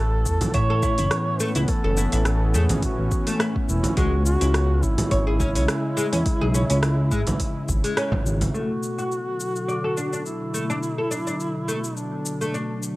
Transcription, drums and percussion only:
0.26 kick, cabasa
0.41 open hi-hat, frame drum, cabasa
0.54 kick, open hi-hat, cabasa
0.83 kick, cabasa
0.98 open hi-hat, cabasa
1.11 cross-stick, open hi-hat, cabasa
1.40 cabasa
1.55 open hi-hat, cabasa
1.68 kick, open hi-hat, cabasa
1.97 cabasa
2.12 open hi-hat, cabasa
2.25 cross-stick, open hi-hat, cabasa
2.55 cabasa
2.70 open hi-hat, frame drum, cabasa
2.83 kick, open hi-hat, cabasa
3.12 kick, cabasa
3.27 open hi-hat, cabasa
3.40 cross-stick, open hi-hat, cabasa
3.56 kick
3.69 cabasa
3.84 open hi-hat, frame drum, cabasa
3.97 kick, open hi-hat, cabasa
4.26 cabasa
4.41 open hi-hat, cabasa
4.54 cross-stick, open hi-hat, cabasa
4.83 kick, cabasa
4.98 open hi-hat, frame drum, cabasa
5.11 kick, open hi-hat, cabasa
5.40 kick, cabasa
5.55 open hi-hat, cabasa
5.68 cross-stick, open hi-hat, cabasa
5.97 cabasa
6.13 open hi-hat, cabasa
6.26 kick, open hi-hat, cabasa
6.55 cabasa
6.70 open hi-hat, cabasa
6.83 cross-stick, open hi-hat, cabasa
7.12 kick, cabasa
7.27 open hi-hat, frame drum, cabasa
7.40 kick, open hi-hat, cabasa
7.69 kick, cabasa
7.84 open hi-hat, cabasa
7.97 cross-stick, open hi-hat, cabasa
8.12 kick, frame drum
8.26 cabasa
8.41 open hi-hat, frame drum, cabasa
8.55 cabasa
8.83 cabasa
8.99 cabasa
9.12 cabasa
9.40 cabasa
9.56 cabasa
9.69 cabasa
9.97 cabasa
10.13 cabasa
10.26 cabasa
10.54 cabasa
10.70 cabasa
10.83 cabasa
11.11 cabasa
11.27 cabasa
11.40 cabasa
11.69 cabasa
11.84 cabasa
11.97 cabasa
12.26 cabasa
12.41 cabasa
12.54 cabasa
12.83 cabasa

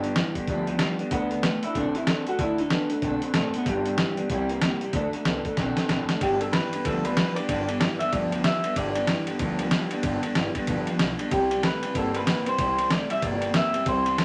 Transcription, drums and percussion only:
0.04 closed hi-hat
0.16 snare, closed hi-hat
0.35 kick, closed hi-hat
0.48 kick, closed hi-hat
0.67 closed hi-hat
0.79 snare, closed hi-hat
0.99 closed hi-hat
1.11 kick, closed hi-hat
1.31 closed hi-hat
1.43 snare, closed hi-hat
1.63 closed hi-hat
1.75 kick, closed hi-hat
1.95 closed hi-hat
2.07 snare, closed hi-hat
2.27 closed hi-hat
2.39 kick, closed hi-hat
2.58 closed hi-hat
2.70 snare, closed hi-hat
2.90 closed hi-hat
3.02 kick, closed hi-hat
3.22 closed hi-hat
3.34 snare, closed hi-hat
3.54 closed hi-hat
3.66 kick, closed hi-hat
3.86 closed hi-hat
3.98 snare, closed hi-hat
4.17 closed hi-hat
4.30 kick, closed hi-hat
4.49 closed hi-hat
4.62 snare, closed hi-hat
4.81 closed hi-hat
4.93 kick, closed hi-hat
5.13 closed hi-hat
5.25 snare, closed hi-hat
5.45 kick, closed hi-hat
5.57 kick, snare, closed hi-hat
5.77 snare, closed hi-hat
5.89 snare, closed hi-hat
6.09 snare, closed hi-hat
6.21 kick, ride
6.41 ride
6.53 snare, ride
6.73 ride
6.85 kick, ride
7.05 ride
7.17 snare, ride
7.36 ride
7.49 kick, ride
7.69 ride
7.81 snare, ride
8.00 ride
8.13 kick, ride
8.32 ride
8.44 snare, ride
8.64 ride
8.76 kick, ride
8.95 ride
9.07 snare, ride
9.27 ride
9.39 kick, ride
9.59 ride
9.71 snare, ride
9.91 ride
10.03 kick, ride
10.23 ride
10.35 snare, ride
10.55 kick, ride
10.67 kick, ride
10.87 ride
10.99 snare, ride
11.19 ride
11.31 kick, ride
11.51 ride
11.63 snare, ride
11.83 ride
11.95 kick, ride
12.15 ride
12.27 snare, ride
12.46 ride
12.58 kick, ride
12.78 ride
12.90 snare, ride
13.10 ride
13.22 kick, ride
13.42 ride
13.54 snare, ride
13.74 ride
13.86 kick, ride
14.06 ride
14.18 snare, ride

